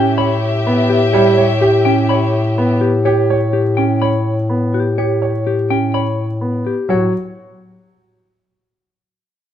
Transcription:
Already playing: bass clarinet A2, grand piano C#4, string section G4 E5, clean electric guitar G5
0.18 grand piano C#5, clean electric guitar B5
0.67 grand piano B3
0.90 clean electric guitar G4
1.13 grand piano G3 G4, clean electric guitar C#5
1.38 grand piano C#5
1.61 clean electric guitar G4, grand piano G4
1.85 grand piano C#4, clean electric guitar G5
2.09 grand piano C#5, clean electric guitar B5
2.58 grand piano B3
2.81 clean electric guitar G4
3.05 grand piano G4, clean electric guitar C#5
3.30 grand piano C#5
3.53 clean electric guitar G4
3.77 grand piano C#4, clean electric guitar G5
4.02 grand piano C#5, clean electric guitar B5
4.50 grand piano B3
4.74 clean electric guitar G4
4.98 grand piano G4, clean electric guitar C#5
5.22 grand piano C#5
5.47 clean electric guitar G4
5.70 grand piano C#4, clean electric guitar G5
5.94 grand piano C#5, clean electric guitar B5
6.41 grand piano B3
6.67 clean electric guitar G4
6.89 bass clarinet A2, grand piano F#3 F#4, clean electric guitar C#5

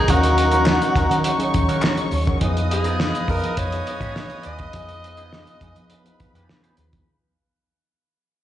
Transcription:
Already playing: horn section A#2 F#3 D#4, tine electric piano F#3 C#4 D#4 A#4, alto saxophone G#4, string section A#4 A#5
0.07 fingered electric bass D#2, tine electric piano F#3 C#4 D#4 F5, clean electric guitar C#4 F#4 A#4, alto saxophone F#4, kick, closed hi-hat
0.23 closed hi-hat
0.38 muted clean electric guitar stroke, closed hi-hat
0.51 tine electric piano F3 C#4 D#4 C#5, clean electric guitar C#4 F#4 A#4, closed hi-hat
0.59 tine electric piano F#3
0.66 muted clean electric guitar stroke, snare, clap
0.82 closed hi-hat
0.96 fingered electric bass D#2, clean electric guitar C#4 F#4 A#4, kick, closed hi-hat
1.10 fingered electric bass D#3, muted clean electric guitar stroke, closed hi-hat
1.24 string section C#5 C#6, muted clean electric guitar stroke, closed hi-hat
1.38 tine electric piano F#3 C#4 D#4 G#4, muted clean electric guitar stroke, closed hi-hat
1.54 fingered electric bass D#2, kick, closed hi-hat
1.68 fingered electric bass D#3, clean electric guitar C#4 F#4 A#4, closed hi-hat
1.82 clean electric guitar C#4 F#4 A#4, snare, clap
1.97 closed hi-hat
2.11 fingered electric bass D#2, muted clean electric guitar stroke, open hi-hat
2.27 clean electric guitar C#4 F#4 A#4, kick, closed hi-hat
2.40 fingered electric bass F2, tine electric piano F3 B3 D#4 G#4, horn section G#3 F4 B4, clean electric guitar B3 D#4 G#4, string section D#5 D#6, kick, closed hi-hat
2.57 closed hi-hat
2.71 alto saxophone G#4, muted clean electric guitar stroke, closed hi-hat
2.83 tine electric piano F3 B3 D#4 G#4, clean electric guitar D#4 A#4, closed hi-hat
2.87 clean electric guitar B3
3.00 snare
3.15 closed hi-hat
3.28 fingered electric bass F2, clean electric guitar B3 D#4 A#4, alto saxophone A#4, kick, open hi-hat
3.43 fingered electric bass F3, closed hi-hat
3.57 fingered electric bass F2, alto saxophone C#5, muted clean electric guitar stroke, kick, closed hi-hat
3.71 tine electric piano F3 B3 D#4 G#4, muted clean electric guitar stroke, closed hi-hat
3.87 closed hi-hat
4.00 fingered electric bass G#2, clean electric guitar B3 D#4 G#4, kick, closed hi-hat
4.16 snare
4.30 closed hi-hat
4.43 fingered electric bass D#2, clean electric guitar B3 D#4, alto saxophone D#5, closed hi-hat
4.48 clean electric guitar G#4
4.59 muted clean electric guitar stroke, kick, closed hi-hat
4.73 fingered electric bass F2, tine electric piano F3 B3 D#4 G#4, clean electric guitar B3 D#4 G#4, kick, closed hi-hat
4.89 closed hi-hat
5.04 muted clean electric guitar stroke, closed hi-hat
5.16 tine electric piano F3 B3 D#4 G#4, clean electric guitar B3 D#4 G#4, closed hi-hat
5.33 snare
5.47 closed hi-hat
5.61 fingered electric bass F2, clean electric guitar B3 D#4 G#4, kick, closed hi-hat
5.76 fingered electric bass F3, muted clean electric guitar stroke, closed hi-hat
5.90 string section B4 B5, muted clean electric guitar stroke, closed hi-hat
6.04 tine electric piano F3 B3 D#4 F4, muted clean electric guitar stroke, closed hi-hat
6.20 muted fingered electric bass stroke, kick, closed hi-hat
6.34 fingered electric bass F2, clean electric guitar B3 D#4 G#4, closed hi-hat
6.49 muted clean electric guitar stroke, snare
6.63 clean electric guitar B3 D#4 G#4, closed hi-hat
6.77 fingered electric bass D#2, muted clean electric guitar stroke, closed hi-hat
6.93 muted clean electric guitar stroke, kick, closed hi-hat

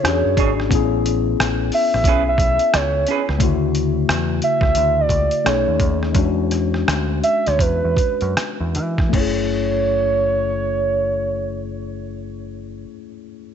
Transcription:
0.03 picked electric bass E2, tine electric piano C#4 D4 F#4 G4, soft synth lead C#5, cross-stick, closed hi-hat
0.13 tine electric piano G#4
0.25 picked electric bass F#2
0.37 picked electric bass G#1, clean electric guitar D4 G#4 C#5, kick, closed hi-hat
0.60 cross-stick
0.69 picked electric bass A1, tine electric piano B3 C#4 E4, kick, closed hi-hat
0.75 tine electric piano G#4
1.06 closed hi-hat
1.40 picked electric bass A1, cross-stick, closed hi-hat
1.72 soft synth lead E5, open hi-hat
1.94 picked electric bass A1, cross-stick
2.04 picked electric bass B1, clean electric guitar C#4, kick, closed hi-hat
2.08 clean electric guitar G#4 B4
2.29 soft synth lead E5
2.38 picked electric bass B1, kick, closed hi-hat
2.59 closed hi-hat
2.74 picked electric bass C#2, soft synth lead C#5, cross-stick, closed hi-hat
3.07 clean electric guitar C#4 G#4, closed hi-hat
3.11 clean electric guitar B4
3.29 picked electric bass C#2, cross-stick
3.39 picked electric bass D2, tine electric piano C#3 A3 E4, kick, closed hi-hat
3.44 tine electric piano F#4
3.75 closed hi-hat
4.09 picked electric bass E2, cross-stick, closed hi-hat
4.42 soft synth lead E5, closed hi-hat
4.61 picked electric bass C#2, kick, cross-stick
4.75 picked electric bass D2, closed hi-hat
5.00 soft synth lead D5
5.09 picked electric bass C#2, kick, closed hi-hat
5.31 closed hi-hat
5.44 picked electric bass B1, tine electric piano A3 C#4 D#4 G#4, soft synth lead C#5, cross-stick, closed hi-hat
5.68 picked electric bass D#2
5.80 picked electric bass D#2, kick, closed hi-hat
6.03 cross-stick
6.13 picked electric bass E2, tine electric piano G#3 C#4 D4, kick, closed hi-hat
6.19 tine electric piano F#4
6.51 cross-stick, closed hi-hat
6.74 cross-stick
6.88 picked electric bass D2, cross-stick, closed hi-hat
7.24 soft synth lead E5, closed hi-hat
7.46 picked electric bass D2, soft synth lead C#5, cross-stick, closed hi-hat
7.59 picked electric bass E2, soft synth lead B4, kick, closed hi-hat
7.84 picked electric bass E2
7.97 kick, closed hi-hat
8.21 picked electric bass F#2, closed hi-hat
8.37 cross-stick, closed hi-hat
8.60 picked electric bass E2
8.75 picked electric bass E3, closed hi-hat
8.98 kick, cross-stick
9.09 tine electric piano A3 C#4, kick
9.14 picked electric bass F#1, tine electric piano E4, soft synth lead C#5, crash
9.21 tine electric piano G#4

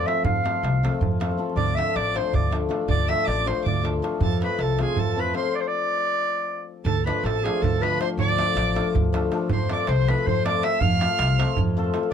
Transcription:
0.06 hammered dulcimer F3 A3 C4 F4 A4, clarinet E5, darbuka tek
0.24 upright bass F2, clarinet F5, darbuka dum
0.36 darbuka tek
0.43 hammered dulcimer F3 A3 C4 F4 A4, darbuka tek
0.63 upright bass C2, darbuka tek
0.83 hammered dulcimer F3 A3 C4 F4 A4, darbuka tek
0.95 darbuka tek
1.01 upright bass F2, darbuka dum
1.12 darbuka tek
1.20 hammered dulcimer F3 A3 C4 F4 A4, darbuka tek
1.31 darbuka tek
1.37 hammered dulcimer F3 A3 C4 F4 A4
1.50 darbuka tek
1.56 upright bass D2, clarinet D5, violin D6, darbuka dum
1.75 hammered dulcimer F3 A3 D4 F4 A4, clarinet E5, violin E6, darbuka tek
1.87 darbuka tek
1.96 upright bass A1, clarinet D5, violin D6, darbuka tek
2.06 darbuka tek
2.15 hammered dulcimer F3 A3 D4 F4 A4, clarinet C5, violin C6, darbuka tek
2.25 darbuka tek
2.34 upright bass D2, clarinet D5, violin D6, darbuka dum
2.44 darbuka tek
2.51 hammered dulcimer F3 A3 D4 F4 A4, darbuka tek
2.69 hammered dulcimer F3 A3 D4 F4 A4, darbuka tek
2.89 upright bass D2, clarinet D5, violin D6, darbuka dum
3.08 hammered dulcimer F3 A3 D4 F4 A4, clarinet E5, violin E6, darbuka tek
3.25 upright bass A1, clarinet D5, violin D6, darbuka tek
3.38 darbuka tek
3.46 hammered dulcimer F3 A3 D4 F4 A4, clarinet C5, violin C6, darbuka tek
3.56 darbuka tek
3.64 upright bass D2, clarinet D5, violin D6, darbuka dum
3.76 darbuka tek
3.83 hammered dulcimer F3 A3 D4 F4 A4, darbuka tek
4.02 hammered dulcimer F3 A3 D4 F4 A4, darbuka tek
4.20 upright bass F2, clarinet A4, violin A5, darbuka dum
4.42 hammered dulcimer F3 A3 C4 F4 A4, clarinet B4, violin B5, darbuka tek
4.51 darbuka tek
4.59 upright bass C2, clarinet A4, violin A5, darbuka tek
4.70 darbuka tek
4.79 hammered dulcimer F3 A3 C4 F4 A4, clarinet G#4, violin G#5, darbuka tek
4.88 darbuka tek
4.96 upright bass F2, clarinet A4, violin A5, darbuka dum
5.08 darbuka tek
5.16 hammered dulcimer F3 A3 C4 F4 A4, clarinet B4, violin B5
5.33 hammered dulcimer F3 A3 C4 F4 A4, clarinet C5, violin C6, darbuka tek
5.55 clarinet D5
5.60 clarinet C5
5.67 clarinet D5
6.84 upright bass D2, clarinet A4, violin A5, darbuka dum
7.06 hammered dulcimer F3 A3 D4 F4 A4, clarinet B4, violin B5, darbuka tek
7.17 darbuka tek
7.23 upright bass A1, clarinet A4, violin A5, darbuka tek
7.36 darbuka tek
7.44 hammered dulcimer F3 A3 D4 F4 A4, clarinet G#4, violin G#5, darbuka tek
7.56 darbuka tek
7.62 upright bass D2, clarinet A4, violin A5, darbuka dum
7.75 darbuka tek
7.81 hammered dulcimer F3 A3 D4 F4 A4, clarinet B4, violin B5, darbuka tek
8.00 hammered dulcimer F3 A3 D4 F4 A4, clarinet C5, violin C6, darbuka tek
8.17 upright bass D2, clarinet D5, violin D6, darbuka dum
8.37 hammered dulcimer F3 A3 D4 F4 A4, darbuka tek
8.48 darbuka tek
8.56 upright bass A1, darbuka tek
8.75 hammered dulcimer F3 A3 D4 F4 A4, darbuka tek
8.87 darbuka tek
8.95 upright bass D2, darbuka dum
9.05 darbuka tek
9.13 hammered dulcimer F3 A3 D4 F4 A4, darbuka tek
9.31 hammered dulcimer F3 A3 D4 F4 A4, darbuka tek
9.50 upright bass F2, clarinet C5, violin C6, darbuka dum
9.69 hammered dulcimer F3 A3 C4 F4 A4, clarinet D5, violin D6, darbuka tek
9.79 darbuka tek
9.87 upright bass C2, clarinet C5, violin C6, darbuka tek
9.99 darbuka tek
10.07 hammered dulcimer F3 A3 C4 F4 A4, clarinet B4, violin B5, darbuka tek
10.19 darbuka tek
10.26 upright bass F2, clarinet C5, violin C6, darbuka dum
10.37 darbuka tek
10.45 hammered dulcimer F3 A3 C4 F4 A4, clarinet D5, violin D6, darbuka tek
10.62 hammered dulcimer F3 A3 C4 F4 A4, clarinet E5, violin E6, darbuka tek
10.80 upright bass F2, clarinet F5, violin F6, darbuka dum
10.91 darbuka tek
11.01 hammered dulcimer F3 A3 C4 F4 A4, darbuka tek
11.10 darbuka tek
11.19 upright bass C2, darbuka tek
11.38 hammered dulcimer F3 A3 C4 F4 A4, darbuka tek
11.49 darbuka tek
11.57 upright bass F2, darbuka dum
11.77 hammered dulcimer F3 A3 C4 F4 A4
11.84 darbuka tek
11.94 hammered dulcimer F3 A3 C4 F4 A4, darbuka tek
12.03 darbuka tek

